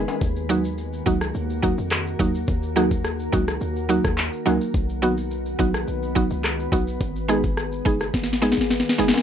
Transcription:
Already playing: D#3 G#3 B3 G#4 B4
0.08 high timbale, maracas, shaker
0.21 D#2 A#3 F#4 A#4, kick, shaker, maracas
0.36 maracas, shaker
0.49 F#3 A#3 D#4 F#4, closed hi-hat, shaker
0.65 maracas, shaker
0.78 shaker, maracas
0.93 maracas, shaker
1.06 C#2 F#3 A#3 D#4 F#4, kick, closed hi-hat, shaker, maracas
1.21 cross-stick, shaker, maracas
1.34 D#2, shaker, maracas
1.50 shaker, maracas
1.62 F#3 A#3 D#4 F#4, kick, closed hi-hat, shaker
1.78 F2, shaker, maracas
1.91 cross-stick, clap, shaker, maracas
2.06 maracas, shaker
2.19 D#2 F#3 A#3 D#4 F#4, kick, closed hi-hat, maracas, shaker
2.35 maracas, shaker
2.47 D#2, kick, maracas, shaker
2.62 maracas, shaker
2.76 F#3 A#3 D#4 F#4, cross-stick, closed hi-hat, shaker
2.91 kick, maracas, shaker
3.04 cross-stick, maracas, shaker
3.19 maracas, shaker
3.32 C#2 F#3 A#3 D#4 F#4, kick, closed hi-hat, high timbale, maracas, shaker
3.48 cross-stick, maracas, shaker
3.61 D#2, maracas, shaker
3.76 maracas, shaker
3.89 F#3 A#3 D#4 F#4, closed hi-hat, shaker
4.04 D#2, kick, cross-stick, maracas, shaker
4.17 clap, maracas, shaker
4.33 maracas, shaker
4.46 C#2 F#3 A#3 D#4 F#4, closed hi-hat, high timbale, maracas, shaker
4.61 maracas, shaker
4.74 B1 D#3 B3 F#4 B4, kick, maracas, shaker
4.89 maracas, shaker
5.02 F#3 B3 D#4 F#4, closed hi-hat, shaker
5.18 maracas, shaker
5.31 shaker, maracas
5.46 maracas, shaker
5.59 A#1 F#3 B3 D#4 F#4, kick, closed hi-hat, maracas, shaker
5.74 cross-stick, maracas, shaker
5.87 B1, maracas, shaker
6.03 maracas, shaker
6.15 F#3 B3 D#4 F#4, kick, closed hi-hat, shaker
6.30 C#2, maracas, shaker
6.44 cross-stick, clap, maracas, shaker
6.59 shaker, maracas
6.72 B1 F#3 B3 D#4 F#4, kick, closed hi-hat, maracas, shaker
6.87 maracas, shaker
7.01 G#1 D#3 G#3 G#4, kick, maracas, shaker
7.16 maracas, shaker
7.28 G#3 B3 D#4 G#4, cross-stick, closed hi-hat, maracas, shaker
7.44 kick, maracas, shaker
7.57 cross-stick, maracas, shaker
7.72 maracas, shaker
7.85 F#1 G#3 B3 D#4 G#4, kick, closed hi-hat, maracas, shaker
8.00 cross-stick, maracas, shaker
8.14 G#1, kick, snare, shaker, maracas
8.23 snare
8.29 snare, maracas, shaker
8.42 G#3 B3 D#4 G#4, snare, closed hi-hat, maracas, shaker
8.52 snare
8.57 G#1, maracas, shaker
8.61 snare
8.70 snare, maracas, shaker
8.80 snare
8.86 snare, maracas, shaker
8.98 F#1 G#3 B3 D#4 G#4, snare, closed hi-hat, maracas, shaker
9.08 snare
9.14 snare, high timbale, maracas, shaker

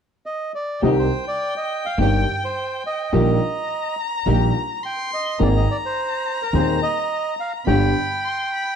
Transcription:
0.26 D#5
0.55 D5
0.82 C2 C3 D#3 G3 C4 D#4 G4 D#5 G5
0.99 C5
1.28 D5
1.57 D#5
1.85 F5
1.98 G1 G2 D#3 G3 C4 D#4 G4 G5
2.45 C5
2.87 D#5
3.13 A#1 A#2 D#3 G3 A#3 D#4 G4 A#5
4.26 A#1 A#2 D#3 G3 A#3 D#4 G4
4.83 G5 C6
5.14 D#5
5.39 G#1 G#2 D#3 A#3 C4 G#4 D5 A#5
5.56 D#5
5.71 D5
5.86 C5
6.42 A#4
6.53 D#1 D#2 D#3 A#3 C4 G#4 C5
6.83 D#5
7.40 F5
7.67 G1 G2 D3 G3 B3 D4 G4 G5 B5
8.25 C6
8.53 B5

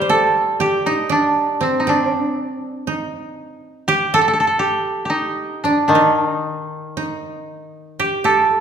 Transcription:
Already playing: G3 G4
0.01 C5
0.09 A4
0.60 G4
0.86 D#4
1.09 D4
1.61 C4
1.80 D#4
1.87 C4 D4
2.05 C#4
2.16 D4
2.87 D#4
3.88 G4
4.14 A4
4.21 A4
4.28 A4
4.33 A4
4.40 A4
4.47 A4
4.59 G4
5.05 G4
5.10 D#4
5.64 D4
5.88 D#3 D4
5.95 D#4
6.25 D#4
6.97 D#4
7.99 G4
8.24 G4 A4
8.46 A4

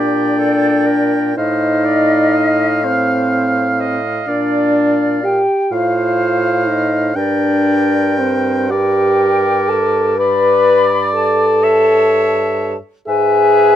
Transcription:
Already playing: A#2 D4 G4 D5 G5
0.39 A4
0.86 A#4
1.37 A2 D#4 C5 D#5 F5
1.85 D5
2.35 D#5
2.83 C4 C5 F5
3.31 F5
3.80 D#5
4.28 A#2 D4 D5
5.24 G4 G5
5.71 A2 F4 C5 F5
6.67 D#4 D#5
7.16 G2 D4 A#4 D5 G5
8.19 C4 C5
8.71 G4 A#4 D5 G5
9.69 A4 A5
10.18 B4 D5 B5
11.15 A4 A5
11.63 C#5 E5
13.07 G#2 G#4 B4 E5 G#5

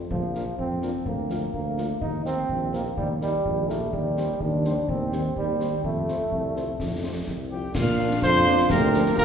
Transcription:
0.11 A#1 F3, concert bass drum
0.34 A#3 D4 F4 A#4, snare
0.58 F2 C4, concert bass drum
0.82 A#3 D4 F4 A#4, snare
1.06 D2 A#3, concert bass drum
1.30 A#3 F4 A#4, snare
1.53 D2 A#3, concert bass drum
1.78 A#3 F4 A#4, snare
2.01 D#2 D#4, concert bass drum
2.25 A#3 C4 D#4 G4 A#4, snare
2.49 A#1, concert bass drum
2.73 A#3 D#4 G4 A#4, snare
2.97 D#2 G3, concert bass drum
3.21 G3 A#3 D#4 G4 A#4, snare
3.45 A#1, concert bass drum
3.69 A3 A#3 D#4 G4 A#4, snare
3.93 D#2 G3, concert bass drum
4.17 G3 C4 G4 C5, snare
4.40 D#2 D4, concert bass drum
4.64 G3 C4 G4 C5, snare
4.88 D#2 C4, concert bass drum
5.12 G3 C4 G4 C5, snare
5.36 D#2 G3, concert bass drum
5.60 G3 C4 G4 C5, snare
5.84 F2 A3, concert bass drum
6.08 C4 F4 C5, snare
6.32 C2, concert bass drum
6.56 C4 F4 C5, snare
6.79 F2, concert bass drum, snare
7.03 C4 F4 C5
7.27 C2, concert bass drum, snare
7.51 C4 F4 G4 G5
7.74 A#2 F3 D4 F4 F5, concert bass drum, snare, crash
7.98 F3 A#3 D4
8.11 snare
8.22 F2 F4 C5 C6, concert bass drum, snare
8.46 F3 A#3 D4, snare
8.58 snare
8.70 D2 A#3 G4 A#4 A#5, concert bass drum, snare
8.94 F3 A#3 D4, snare
9.06 snare
9.18 D2 F4 A#4 A#5, concert bass drum, snare

